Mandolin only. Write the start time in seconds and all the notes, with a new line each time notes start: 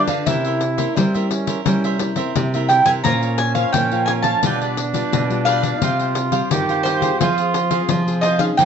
0.26 E5
2.69 G5
2.86 G#5
3.04 A#5
3.38 G#5
3.55 F5
3.72 G5
4.06 G#5
4.23 A5
5.45 F5
6.83 C5
8.21 D#5
8.39 F5
8.57 G5